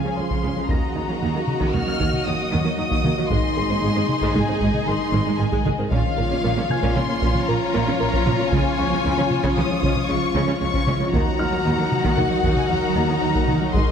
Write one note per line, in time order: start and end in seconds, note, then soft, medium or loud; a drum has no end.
0.00 0.66 F3 medium
0.00 0.66 C#4 medium
0.00 0.66 F4 soft
0.00 0.70 G#4 medium
0.00 0.66 F5 medium
0.00 0.18 G#5 medium
0.04 0.10 C#3 medium
0.04 0.13 G#3 medium
0.04 0.11 C#4 soft
0.17 0.23 C#2 medium
0.17 0.23 C#3 soft
0.17 0.24 G#3 medium
0.17 0.25 C#4 medium
0.17 0.70 C6 medium
0.30 0.38 C#3 medium
0.30 0.36 C#3 medium
0.30 0.37 C#4 medium
0.30 taiko medium
0.43 0.49 C#2 medium
0.43 0.49 C#3 medium
0.43 0.52 G#3 medium
0.43 0.51 C#4 medium
0.57 0.62 C#3 medium
0.57 0.65 F3 medium
0.57 0.63 G#3 medium
0.69 0.75 D#2 medium
0.69 0.78 D#3 medium
0.69 0.75 D#3 medium
0.69 5.75 D#3 medium
0.69 3.31 F#3 medium
0.69 3.31 A#3 medium
0.69 0.76 A#3 medium
0.69 3.31 F#4 medium
0.69 3.27 F#4 medium
0.69 3.32 F#4 medium
0.69 5.92 D#5 medium
0.69 1.74 A#5 medium
0.69 2.23 A#6 soft
0.69 taiko medium
0.95 1.01 D#2 medium
0.95 1.01 D#3 medium
0.95 1.02 F#3 soft
0.95 1.04 D#4 medium
1.08 1.14 D#3 medium
1.08 1.17 F#3 medium
1.08 1.15 A#3 medium
1.22 1.27 D#2 medium
1.22 1.30 D#3 medium
1.22 1.27 D#3 medium
1.22 1.28 A#3 medium
1.35 1.40 D#3 medium
1.35 1.43 F#3 medium
1.35 1.41 A#3 medium
1.48 taiko mid medium
1.61 1.66 D#3 medium
1.61 1.69 D#3 loud
1.61 1.67 A#3 medium
1.61 taiko medium
1.73 1.79 D#2 medium
1.73 1.79 D#3 medium
1.73 1.82 A#3 medium
1.73 1.80 A#3 medium
1.73 2.26 F6 loud
1.73 taiko mid soft
1.86 1.92 D#3 medium
1.86 1.95 F#3 medium
1.86 1.93 F#3 medium
2.00 2.05 D#2 medium
2.00 2.05 D#3 medium
2.00 2.08 D#3 medium
2.00 2.06 A#3 medium
2.00 taiko medium
2.13 taiko mid soft
2.26 2.31 D#2 medium
2.26 2.31 D#3 medium
2.26 2.32 F#3 medium
2.26 2.34 D#4 medium
2.26 2.76 D#6 loud
2.52 2.58 D#2 medium
2.52 2.57 D#3 medium
2.52 2.60 D#3 medium
2.52 2.58 A#3 medium
2.65 2.70 D#3 medium
2.65 2.71 A#3 medium
2.65 2.73 A#3 medium
2.78 2.84 D#2 medium
2.78 2.83 D#3 medium
2.78 2.83 F#3 medium
2.78 2.86 D#4 medium
2.78 3.29 D#6 loud
2.91 2.96 D#3 medium
2.91 3.00 D#3 medium
2.91 2.96 A#3 medium
2.91 taiko medium
3.04 3.10 D#2 medium
3.04 3.10 D#3 medium
3.04 3.12 A#3 medium
3.04 3.10 A#3 medium
3.04 taiko mid medium
3.18 3.23 D#3 medium
3.18 3.23 F#3 medium
3.18 3.26 F#3 medium
3.30 3.36 G#1 medium
3.30 3.36 G#2 medium
3.30 5.92 D#3 medium
3.30 3.36 G#3 medium
3.30 5.92 G#3 medium
3.30 3.39 G#3 medium
3.30 5.75 D#4 medium
3.30 5.92 D#4 medium
3.30 5.92 G#4 medium
3.30 4.33 C6 loud
3.30 taiko medium
3.57 3.62 G#1 medium
3.57 3.62 G#2 medium
3.57 3.62 D#3 medium
3.57 3.65 G#4 medium
3.70 3.75 G#2 medium
3.70 3.76 G#3 medium
3.70 3.78 C4 medium
3.83 3.89 G#1 medium
3.83 3.88 G#2 loud
3.83 3.89 G#3 medium
3.83 3.91 G#3 medium
3.96 4.02 G#2 medium
3.96 4.01 G#3 medium
3.96 4.04 C4 medium
4.09 taiko mid medium
4.21 4.28 G#2 loud
4.21 4.30 G#3 loud
4.21 4.28 G#3 loud
4.21 taiko medium
4.35 4.41 G#1 medium
4.35 4.41 G#2 medium
4.35 4.41 G#3 medium
4.35 4.43 D#4 medium
4.35 4.87 G#5 loud
4.35 taiko mid medium
4.48 4.54 G#2 medium
4.48 4.53 D#3 medium
4.48 4.57 C4 medium
4.61 4.67 G#1 medium
4.61 4.67 G#2 medium
4.61 4.69 G#3 medium
4.61 4.67 G#3 medium
4.61 taiko medium
4.74 taiko mid soft
4.87 4.93 G#1 medium
4.87 4.93 G#2 medium
4.87 4.93 D#3 medium
4.87 4.95 G#4 medium
4.87 5.40 C6 loud
5.13 5.19 G#1 loud
5.13 5.19 G#2 loud
5.13 5.22 G#3 medium
5.13 5.19 G#3 medium
5.27 5.32 G#2 medium
5.27 5.32 G#3 medium
5.27 5.34 D#4 medium
5.40 5.45 G#1 medium
5.40 5.45 G#2 medium
5.40 5.45 D#3 medium
5.40 5.48 G#4 medium
5.40 5.66 G#5 medium
5.52 5.58 G#2 medium
5.52 5.60 G#3 loud
5.52 5.58 G#3 loud
5.52 taiko medium
5.65 5.71 G#1 medium
5.65 5.71 G#2 medium
5.65 5.71 G#3 medium
5.65 5.74 D#4 medium
5.65 taiko mid medium
5.79 5.84 G#2 medium
5.79 5.84 D#3 medium
5.79 5.87 C4 medium
5.91 5.97 A#1 loud
5.91 5.98 A#2 loud
5.91 11.14 F3 medium
5.91 11.10 F3 medium
5.91 8.53 A#3 medium
5.91 6.00 A#3 loud
5.91 11.10 C#4 medium
5.91 5.97 C#4 medium
5.91 11.10 F4 medium
5.91 11.14 F4 medium
5.91 11.10 F4 medium
5.91 11.09 C#5 medium
5.91 11.14 C#5 medium
5.91 6.92 F5 loud
5.91 taiko loud
6.18 6.23 A#1 medium
6.18 6.23 A#2 medium
6.18 6.24 A#3 medium
6.18 6.26 A#4 medium
6.31 6.36 A#2 medium
6.31 6.39 C#4 medium
6.31 6.37 C#4 medium
6.44 6.50 A#1 loud
6.44 6.50 A#2 loud
6.44 6.52 A#3 loud
6.44 6.50 C#4 loud
6.57 6.63 A#2 medium
6.57 6.65 C#4 medium
6.57 6.63 C#4 medium
6.70 8.23 G#5 medium
6.70 8.23 G#6 medium
6.70 taiko mid medium
6.83 6.89 A#2 loud
6.83 6.91 A#3 loud
6.83 6.88 C#4 loud
6.83 taiko medium
6.96 7.02 A#1 medium
6.96 7.02 A#2 medium
6.96 7.01 C#4 medium
6.96 7.04 F4 medium
6.96 7.48 C6 loud
6.96 taiko mid medium
7.09 7.14 A#2 medium
7.09 7.14 A#3 medium
7.09 7.17 C#4 medium
7.22 7.28 A#1 medium
7.22 7.28 A#2 loud
7.22 7.30 A#3 loud
7.22 7.27 C#4 medium
7.22 taiko medium
7.35 taiko mid medium
7.48 7.54 A#1 medium
7.48 7.54 A#2 medium
7.48 7.54 A#3 medium
7.48 7.56 A#4 medium
7.48 7.99 A#5 loud
7.74 7.80 A#1 loud
7.74 7.80 A#2 loud
7.74 7.82 A#3 loud
7.74 7.79 C#4 medium
7.87 7.93 A#2 medium
7.87 7.93 C#4 medium
7.87 7.95 F4 medium
8.00 8.07 A#1 medium
8.00 8.06 A#2 medium
8.00 8.05 A#3 medium
8.00 8.08 A#4 medium
8.00 8.51 A#5 loud
8.13 8.19 A#2 medium
8.13 8.21 A#3 loud
8.13 8.19 C#4 medium
8.13 taiko medium
8.26 8.33 A#1 medium
8.26 8.32 A#2 medium
8.26 8.32 C#4 medium
8.26 8.34 F4 medium
8.26 taiko mid medium
8.39 8.45 A#2 medium
8.39 8.45 A#3 medium
8.39 8.47 C#4 medium
8.52 8.58 C#2 loud
8.52 8.60 C#3 loud
8.52 8.58 C#3 loud
8.52 11.14 G#3 medium
8.52 8.58 C#4 medium
8.52 9.57 G#5 loud
8.52 taiko loud
8.79 8.85 C#2 medium
8.79 8.85 C#3 medium
8.79 8.84 G#3 medium
8.79 8.87 C#4 medium
8.79 10.31 C#6 medium
8.91 8.97 C#3 medium
8.91 8.99 F3 medium
8.91 8.97 C#4 medium
9.04 9.11 C#2 medium
9.04 9.12 C#3 loud
9.04 9.11 C#3 loud
9.04 9.10 C#4 medium
9.17 9.23 C#3 medium
9.17 9.25 F3 medium
9.17 9.23 C#4 medium
9.31 taiko mid medium
9.44 9.52 C#3 loud
9.44 9.49 C#3 loud
9.44 9.49 C#4 loud
9.44 taiko medium
9.57 9.63 C#2 medium
9.57 9.63 C#3 medium
9.57 9.65 G#3 medium
9.57 9.62 C#4 medium
9.57 10.09 D#6 loud
9.57 taiko mid medium
9.70 9.76 C#3 medium
9.70 9.78 F3 medium
9.70 9.75 G#3 medium
9.82 9.89 C#2 medium
9.82 9.91 C#3 loud
9.82 9.89 C#3 medium
9.82 9.88 C#4 loud
9.82 taiko medium
9.96 taiko mid medium
10.09 10.15 C#2 medium
10.09 10.15 C#3 medium
10.09 10.14 G#3 medium
10.09 10.17 C#4 medium
10.09 10.59 C#6 loud
10.35 10.41 C#2 loud
10.35 10.43 C#3 loud
10.35 10.40 C#3 loud
10.35 10.40 C#4 medium
10.48 10.54 C#3 medium
10.48 10.56 G#3 medium
10.48 10.53 C#4 medium
10.61 10.67 C#2 medium
10.61 10.67 C#3 medium
10.61 10.67 G#3 medium
10.61 10.69 C#4 medium
10.61 11.12 C#6 loud
10.74 10.82 C#3 medium
10.74 10.80 C#3 medium
10.74 10.79 C#4 medium
10.74 taiko medium
10.87 10.93 C#2 medium
10.87 10.93 C#3 medium
10.87 10.95 G#3 medium
10.87 10.92 C#4 medium
10.87 taiko mid medium
11.00 11.06 C#3 medium
11.00 11.08 F3 medium
11.00 11.05 G#3 medium
11.13 11.19 D#2 loud
11.13 11.21 D#3 loud
11.13 11.18 D#3 loud
11.13 13.91 D#3 medium
11.13 13.75 F#3 medium
11.13 11.18 A#3 loud
11.13 13.91 D#4 medium
11.13 13.75 F#4 medium
11.13 13.57 F#4 medium
11.13 13.75 A#4 medium
11.13 13.71 F#5 medium
11.13 12.16 A#5 loud
11.13 taiko loud
11.39 11.45 D#2 medium
11.39 11.45 D#3 medium
11.39 11.45 F#3 medium
11.39 11.47 D#4 medium
11.39 12.92 F6 medium
11.52 11.57 D#3 medium
11.52 11.60 F#3 medium
11.52 11.58 A#3 medium
11.65 11.71 D#2 medium
11.65 11.70 D#3 medium
11.65 11.73 D#3 medium
11.65 11.71 A#3 medium
11.78 11.84 D#3 medium
11.78 11.86 F#3 medium
11.78 11.84 A#3 medium
11.92 taiko mid medium
12.04 12.12 D#3 loud
12.04 12.10 D#3 medium
12.04 12.10 A#3 medium
12.04 taiko medium
12.17 12.23 D#2 medium
12.17 12.23 D#3 medium
12.17 12.25 A#3 medium
12.17 12.23 A#3 medium
12.17 12.57 F#5 medium
12.17 taiko mid medium
12.30 12.36 D#3 medium
12.30 12.38 F#3 medium
12.30 12.36 F#3 medium
12.43 12.50 D#2 medium
12.43 12.51 D#3 loud
12.43 12.49 D#3 medium
12.43 12.49 A#3 medium
12.43 taiko medium
12.57 12.71 G#5 medium
12.57 taiko mid medium
12.70 12.76 D#2 medium
12.70 12.75 D#3 medium
12.70 12.75 F#3 medium
12.70 12.78 D#4 medium
12.70 13.72 A#5 loud
12.95 13.02 D#2 medium
12.95 13.04 D#3 loud
12.95 13.01 D#3 medium
12.95 13.01 A#3 medium
13.09 13.14 D#3 medium
13.09 13.14 A#3 medium
13.09 13.17 A#3 medium
13.21 13.28 D#2 medium
13.21 13.27 D#3 medium
13.21 13.27 F#3 medium
13.21 13.30 D#4 medium
13.34 13.43 D#3 loud
13.34 13.41 D#3 medium
13.34 13.40 A#3 medium
13.34 taiko medium
13.48 13.54 D#2 medium
13.48 13.54 D#3 medium
13.48 13.56 A#3 medium
13.48 13.53 A#3 medium
13.48 taiko mid medium
13.60 13.67 D#3 medium
13.60 13.66 F#3 medium
13.60 13.69 F#3 medium
13.74 13.80 G#1 medium
13.74 13.80 G#2 medium
13.74 13.79 G#3 medium
13.74 13.82 G#3 loud
13.74 13.91 G#3 medium
13.74 13.91 D#4 medium
13.74 13.91 G#4 medium
13.74 13.91 D#5 medium
13.74 13.91 C6 medium
13.74 taiko loud